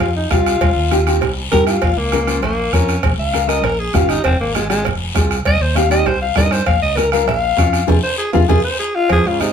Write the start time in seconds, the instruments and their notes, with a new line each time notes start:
0.00 fingered electric bass F2, alto saxophone F4, bombo rim, cowbell, high conga, low conga, long guiro
0.16 alto saxophone D#4
0.30 fingered electric bass C2, nylon-string guitar C4 F4 G4, alto saxophone F4, bombo low, bombo rim, high conga, low timbale, short guiro
0.46 bombo rim, short guiro
0.61 fingered electric bass C2, bombo low, bombo rim, cowbell, high conga, low conga, long guiro
0.76 fingered electric bass D#2
0.91 nylon-string guitar C4 D#4 G4, bombo rim, high conga, short guiro
1.07 nylon-string guitar C4 D#4 G4, bombo rim, short guiro
1.21 fingered electric bass C2, bombo rim, cowbell, high conga, low conga, long guiro
1.52 fingered electric bass G2, nylon-string guitar C4 D#4 G4, alto saxophone A#4, bombo low, bombo rim, high conga, low conga, short guiro
1.67 alto saxophone F4, bombo rim, short guiro
1.82 fingered electric bass A#1, alto saxophone F4, bombo low, bombo rim, cowbell, high conga, long guiro
1.97 fingered electric bass C#2, alto saxophone A#3
2.12 nylon-string guitar C#4 F4 A#4, bombo rim, high conga, short guiro
2.27 nylon-string guitar C#4 F4 C5, bombo rim, short guiro
2.42 fingered electric bass A#1, alto saxophone A#3, bombo rim, cowbell, high conga, low conga, long guiro
2.73 fingered electric bass F2, alto saxophone C#4, nylon-string guitar C#4 F4 A#4, bombo low, bombo rim, high conga, short guiro
2.89 bombo rim, short guiro
3.03 fingered electric bass A#1, bombo low, bombo rim, cowbell, high conga, low conga, long guiro
3.18 fingered electric bass C#2, alto saxophone F5
3.33 nylon-string guitar C#4 F4 A#4, bombo rim, high conga, short guiro
3.47 nylon-string guitar C#4 F4 A#4, alto saxophone D#5, bombo rim, short guiro
3.63 fingered electric bass A#1, alto saxophone A#4, bombo rim, cowbell, high conga, low conga, long guiro
3.80 alto saxophone G#4
3.93 fingered electric bass G1, nylon-string guitar C#4 F4 G4, alto saxophone F4, bombo low, bombo rim, high conga, low conga, low timbale, short guiro
4.09 alto saxophone D#4, bombo rim, short guiro
4.24 fingered electric bass F1, alto saxophone C4, bombo low, bombo rim, cowbell, high conga
4.40 fingered electric bass G#1, alto saxophone A#3
4.54 alto saxophone G#3, nylon-string guitar C4 F4 G#4, bombo rim, high conga, short guiro
4.69 alto saxophone G#3, nylon-string guitar C4 F4 G#4, bombo rim, short guiro
4.85 fingered electric bass F1, bombo rim, cowbell, high conga, low conga, long guiro
5.15 fingered electric bass C2, nylon-string guitar C4 F4 G#4, bombo low, bombo rim, high conga, low timbale, short guiro
5.31 bombo rim, short guiro
5.45 fingered electric bass C2, alto saxophone D#5, bombo low, bombo rim, cowbell, high conga, long guiro
5.60 fingered electric bass D#2, alto saxophone C5
5.75 nylon-string guitar C4 D#4 G4, alto saxophone F5, bombo rim, high conga, short guiro
5.89 nylon-string guitar C4 D#4 G4, alto saxophone D#5, bombo rim, short guiro
6.06 fingered electric bass C2, alto saxophone C5, bombo rim, cowbell, high conga, low conga, long guiro
6.21 alto saxophone F5
6.35 fingered electric bass G2, nylon-string guitar C4 D#4 A#4, alto saxophone D#5, bombo low, bombo rim, high conga, low conga, low timbale, short guiro
6.51 alto saxophone C5, bombo rim, short guiro
6.66 fingered electric bass A#1, alto saxophone F5, bombo low, bombo rim, cowbell, high conga, long guiro
6.82 fingered electric bass C#2, alto saxophone D#5
6.97 nylon-string guitar C#4 F4 A#4, alto saxophone A#4, bombo rim, high conga, short guiro
7.12 nylon-string guitar C#4 F4 A#4, alto saxophone F5, bombo rim, short guiro
7.27 fingered electric bass A#1, alto saxophone F5, bombo rim, cowbell, high conga, low conga, long guiro
7.57 fingered electric bass F2, nylon-string guitar C#4 F4 C#5, bombo low, bombo rim, high conga, low timbale, short guiro
7.73 bombo rim, short guiro
7.87 fingered electric bass F2, nylon-string guitar C4 F4 G#4, bombo low, high conga, high timbale, long guiro
8.03 alto saxophone C5
8.18 alto saxophone G#4
8.33 fingered electric bass F2, nylon-string guitar C4 F4 G#4, alto saxophone F4, bombo low, high conga, high timbale, long guiro
8.48 fingered electric bass F2, nylon-string guitar C4 F4 G#4, alto saxophone G#4, bombo low, high conga, high timbale, long guiro
8.64 alto saxophone C5
8.79 alto saxophone G#4
8.95 alto saxophone F4
9.09 fingered electric bass F2, trombone F3, alto saxophone G#4, bombo low, bombo rim, cowbell, high conga, long guiro
9.25 fingered electric bass G#2, trombone C#3, alto saxophone F4
9.40 trombone C3, nylon-string guitar C4 F4 G#4, alto saxophone D#4, bombo rim, high conga, short guiro